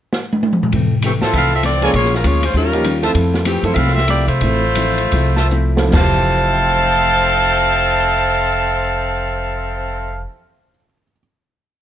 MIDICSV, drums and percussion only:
0, 0, Header, 1, 2, 480
1, 0, Start_track
1, 0, Key_signature, -1, "major"
1, 0, Tempo, 303490
1, 1153, Time_signature, 4, 2, 24, 8
1, 5955, Tempo, 325027
1, 6915, Tempo, 355450
1, 7875, Tempo, 404585
1, 8835, Tempo, 437318
1, 15283, End_track
2, 0, Start_track
2, 0, Title_t, "Drums"
2, 199, Note_on_c, 9, 38, 64
2, 357, Note_off_c, 9, 38, 0
2, 517, Note_on_c, 9, 48, 77
2, 675, Note_off_c, 9, 48, 0
2, 678, Note_on_c, 9, 48, 84
2, 835, Note_on_c, 9, 47, 86
2, 836, Note_off_c, 9, 48, 0
2, 993, Note_off_c, 9, 47, 0
2, 997, Note_on_c, 9, 43, 95
2, 1145, Note_on_c, 9, 51, 56
2, 1155, Note_on_c, 9, 36, 32
2, 1156, Note_off_c, 9, 43, 0
2, 1303, Note_off_c, 9, 51, 0
2, 1313, Note_off_c, 9, 36, 0
2, 1619, Note_on_c, 9, 44, 63
2, 1619, Note_on_c, 9, 51, 71
2, 1777, Note_off_c, 9, 44, 0
2, 1777, Note_off_c, 9, 51, 0
2, 1924, Note_on_c, 9, 38, 56
2, 2082, Note_off_c, 9, 38, 0
2, 2111, Note_on_c, 9, 36, 35
2, 2111, Note_on_c, 9, 51, 57
2, 2269, Note_off_c, 9, 36, 0
2, 2269, Note_off_c, 9, 51, 0
2, 2580, Note_on_c, 9, 44, 56
2, 2580, Note_on_c, 9, 51, 66
2, 2738, Note_off_c, 9, 44, 0
2, 2738, Note_off_c, 9, 51, 0
2, 2880, Note_on_c, 9, 51, 40
2, 3038, Note_off_c, 9, 51, 0
2, 3061, Note_on_c, 9, 51, 60
2, 3068, Note_on_c, 9, 36, 30
2, 3219, Note_off_c, 9, 51, 0
2, 3226, Note_off_c, 9, 36, 0
2, 3237, Note_on_c, 9, 38, 29
2, 3395, Note_off_c, 9, 38, 0
2, 3395, Note_on_c, 9, 38, 40
2, 3545, Note_on_c, 9, 44, 59
2, 3545, Note_on_c, 9, 51, 73
2, 3554, Note_off_c, 9, 38, 0
2, 3703, Note_off_c, 9, 44, 0
2, 3703, Note_off_c, 9, 51, 0
2, 3841, Note_on_c, 9, 51, 67
2, 3999, Note_off_c, 9, 51, 0
2, 4020, Note_on_c, 9, 36, 31
2, 4178, Note_off_c, 9, 36, 0
2, 4321, Note_on_c, 9, 51, 44
2, 4479, Note_off_c, 9, 51, 0
2, 4498, Note_on_c, 9, 44, 52
2, 4498, Note_on_c, 9, 51, 70
2, 4656, Note_off_c, 9, 44, 0
2, 4656, Note_off_c, 9, 51, 0
2, 4796, Note_on_c, 9, 51, 43
2, 4954, Note_off_c, 9, 51, 0
2, 4979, Note_on_c, 9, 36, 33
2, 4979, Note_on_c, 9, 51, 56
2, 5137, Note_off_c, 9, 51, 0
2, 5138, Note_off_c, 9, 36, 0
2, 5285, Note_on_c, 9, 38, 46
2, 5443, Note_off_c, 9, 38, 0
2, 5461, Note_on_c, 9, 44, 60
2, 5461, Note_on_c, 9, 51, 69
2, 5619, Note_off_c, 9, 44, 0
2, 5619, Note_off_c, 9, 51, 0
2, 5750, Note_on_c, 9, 51, 46
2, 5908, Note_off_c, 9, 51, 0
2, 5942, Note_on_c, 9, 51, 60
2, 5947, Note_on_c, 9, 36, 31
2, 6090, Note_off_c, 9, 51, 0
2, 6095, Note_off_c, 9, 36, 0
2, 6111, Note_on_c, 9, 38, 28
2, 6259, Note_off_c, 9, 38, 0
2, 6267, Note_on_c, 9, 38, 42
2, 6414, Note_off_c, 9, 38, 0
2, 6417, Note_on_c, 9, 44, 51
2, 6417, Note_on_c, 9, 51, 70
2, 6565, Note_off_c, 9, 44, 0
2, 6565, Note_off_c, 9, 51, 0
2, 6717, Note_on_c, 9, 51, 42
2, 6865, Note_off_c, 9, 51, 0
2, 6905, Note_on_c, 9, 51, 56
2, 6911, Note_on_c, 9, 36, 32
2, 7041, Note_off_c, 9, 51, 0
2, 7046, Note_off_c, 9, 36, 0
2, 7370, Note_on_c, 9, 44, 62
2, 7370, Note_on_c, 9, 51, 74
2, 7505, Note_off_c, 9, 44, 0
2, 7505, Note_off_c, 9, 51, 0
2, 7675, Note_on_c, 9, 51, 47
2, 7810, Note_off_c, 9, 51, 0
2, 7864, Note_on_c, 9, 51, 59
2, 7873, Note_on_c, 9, 36, 32
2, 7984, Note_off_c, 9, 51, 0
2, 7992, Note_off_c, 9, 36, 0
2, 8157, Note_on_c, 9, 38, 48
2, 8276, Note_off_c, 9, 38, 0
2, 8327, Note_on_c, 9, 44, 67
2, 8446, Note_off_c, 9, 44, 0
2, 8641, Note_on_c, 9, 38, 63
2, 8760, Note_off_c, 9, 38, 0
2, 8834, Note_on_c, 9, 36, 93
2, 8834, Note_on_c, 9, 38, 98
2, 8834, Note_on_c, 9, 49, 79
2, 8944, Note_off_c, 9, 36, 0
2, 8944, Note_off_c, 9, 38, 0
2, 8944, Note_off_c, 9, 49, 0
2, 15283, End_track
0, 0, End_of_file